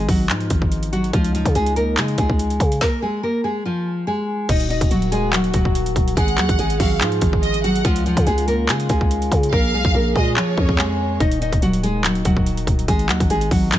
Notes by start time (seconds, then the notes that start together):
Already playing: B2 G#3 D#4
0.09 G#1 F#3 F#4, kick, open hi-hat
0.30 G#2 F3 F4, clap, closed hi-hat
0.40 closed hi-hat
0.50 G#1, kick, closed hi-hat
0.62 kick
0.72 closed hi-hat
0.83 closed hi-hat
0.93 F#3 F#4, closed hi-hat
1.04 closed hi-hat
1.13 C#2 C#3 F3 D#4 F4, kick, closed hi-hat
1.25 closed hi-hat
1.34 F3 F4, closed hi-hat
1.45 C#3, kick, closed hi-hat
1.55 C#2 G#3 G#4, closed hi-hat
1.66 closed hi-hat
1.76 A#3 A#4, closed hi-hat
1.97 C#3 G#3 G#4, clap, closed hi-hat
2.08 closed hi-hat
2.18 C#2 G#3 G#4, kick, closed hi-hat
2.30 C#2, kick
2.39 closed hi-hat
2.50 closed hi-hat
2.60 C#3, kick, closed hi-hat
2.72 closed hi-hat
2.81 A#3 A#4, kick, snare
3.02 G#3 G#4
3.23 A#3 A#4
3.44 G#3 G#4
3.65 F3 F4
4.07 G#3 G#4
4.49 D#1 D#3 A#3 D#4 F#4 D#5, kick, closed hi-hat, crash
4.60 closed hi-hat
4.70 D#4 D#5, closed hi-hat
4.81 D#1, kick, closed hi-hat
4.91 D#1 F#3 F#4, closed hi-hat
5.02 closed hi-hat
5.12 G#3 G#4, closed hi-hat
5.33 F#3 F#4, clap, closed hi-hat
5.44 closed hi-hat
5.54 D#1 F#3 F#4, kick, closed hi-hat
5.65 kick
5.75 closed hi-hat
5.86 closed hi-hat
5.96 D#1, kick, closed hi-hat
6.08 closed hi-hat
6.17 G#1 G#3 B3 G#4 F#5, kick, closed hi-hat
6.28 closed hi-hat
6.38 D#2 F#3 F#4, clap, closed hi-hat
6.49 G#1, kick, closed hi-hat
6.59 G#1 G#3 G#4, closed hi-hat
6.70 closed hi-hat
6.80 G#1 F#3 F#4 F5, kick, open hi-hat
7.01 G#2 F3 F4, clap, closed hi-hat
7.12 closed hi-hat
7.21 G#1, kick, closed hi-hat
7.33 kick
7.43 D#5, closed hi-hat
7.54 closed hi-hat
7.64 F#3 F#4 F#5, closed hi-hat
7.75 closed hi-hat
7.84 C#2 D#3 F3 C#4 F4, kick, closed hi-hat
7.96 closed hi-hat
8.06 F3 F4, closed hi-hat
8.17 C#3, kick, closed hi-hat
8.27 C#2 G#3 G#4, closed hi-hat
8.38 closed hi-hat
8.48 A#3 A#4, closed hi-hat
8.69 C#3 G#3 G#4, clap, closed hi-hat
8.80 closed hi-hat
8.89 C#2 G#3 G#4, kick, closed hi-hat
9.01 kick
9.11 closed hi-hat
9.22 closed hi-hat
9.32 C#3, kick, closed hi-hat
9.43 closed hi-hat
9.52 A#1 C#3 A#3 G#4 A#4 F5, kick
9.73 B1 G#3 G#4
9.85 A#1, kick
9.94 A#1 A#3 A#4
10.16 A#2 G#3 G#4 D#5, kick
10.37 F3 F4 C#5, clap
10.57 F2, kick
10.69 kick
10.79 G#3 G#4, clap
11.20 D#1 D#3 D#4 D#5, kick, closed hi-hat
11.32 closed hi-hat
11.41 D#4 D#5, closed hi-hat
11.53 D#1, kick, closed hi-hat
11.62 D#1 F#3 F#4, closed hi-hat
11.73 closed hi-hat
11.83 G#3 G#4, closed hi-hat
12.04 F#3 F#4, clap, closed hi-hat
12.15 closed hi-hat
12.25 D#1 F#3 F#4, kick, closed hi-hat
12.37 kick
12.46 closed hi-hat
12.57 closed hi-hat
12.67 D#1, kick, closed hi-hat
12.79 closed hi-hat
12.88 G#1 B2 G#3 G#4, kick, closed hi-hat
12.99 closed hi-hat
13.09 D#2 F#3 F#4, clap, closed hi-hat
13.20 G#1, kick, closed hi-hat
13.30 G#1 G#3 G#4, closed hi-hat
13.41 closed hi-hat
13.51 G#1 F#3 F#4, kick, open hi-hat
13.72 G#2 F3 F4, clap, closed hi-hat